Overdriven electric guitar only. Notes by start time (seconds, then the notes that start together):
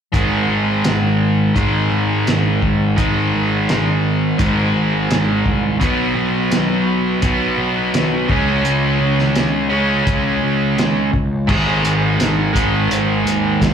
0.12 G#2 D#3 G#3
1.54 G#2 D#3 G#3
2.96 G#2 D#3 G#3
4.38 G#2 D#3 G#3
5.80 B2 F#3 B3
7.22 B2 F#3 B3
8.28 C#3 G#3 C#4
9.69 C#3 G#3 C#4
11.47 G#2 D#3 G#3
12.53 G#2 D#3 G#3